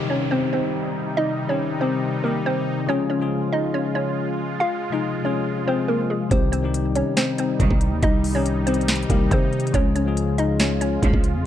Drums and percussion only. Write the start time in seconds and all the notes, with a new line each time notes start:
6.31 kick, closed hi-hat
6.53 closed hi-hat
6.74 closed hi-hat
6.95 closed hi-hat
7.17 snare, closed hi-hat
7.38 closed hi-hat
7.60 kick, closed hi-hat
7.71 kick
7.81 closed hi-hat
8.03 kick, closed hi-hat
8.24 open hi-hat
8.46 closed hi-hat
8.67 closed hi-hat
8.74 closed hi-hat
8.81 closed hi-hat
8.88 snare, closed hi-hat
8.95 closed hi-hat
9.03 closed hi-hat
9.10 kick, closed hi-hat
9.31 kick, closed hi-hat
9.53 closed hi-hat
9.60 closed hi-hat
9.67 closed hi-hat
9.74 kick, closed hi-hat
9.96 closed hi-hat
10.17 closed hi-hat
10.38 closed hi-hat
10.60 snare, closed hi-hat
10.81 closed hi-hat
11.03 kick, closed hi-hat
11.13 kick
11.24 closed hi-hat